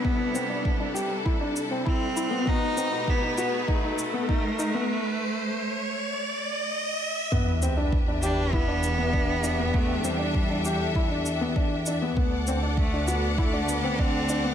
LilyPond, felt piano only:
\new Staff \with { instrumentName = "Felt piano" } { \time 4/4 \key e \minor \tempo 4 = 99 b8 c'16 d'8 d'16 g'8 e'16 d'8 c'16 e'8 e'16 b16 | b8 c'16 dis'8 dis'16 fis'8 dis'16 dis'8 b16 dis'8 dis'16 b16 | r1 | b8 c'16 d'8 d'16 g'8 e'16 d'8 b16 d'8 d'16 b16 |
b8 c'16 d'8 d'16 g'8 e'16 d'8 b16 d'8 d'16 b16 | b8 c'16 d'8 d'16 fis'8 e'16 d'8 c'16 d'8 d'16 b16 | }